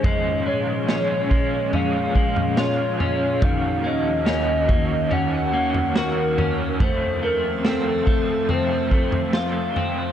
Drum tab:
SD |----o-------o---|----o-------o---|----o-------o---|
FT |o-------o--o--o-|o-----o-o--o--o-|o-------o--o--o-|
BD |o-----o---o-----|o-----o---------|o-----o---o-----|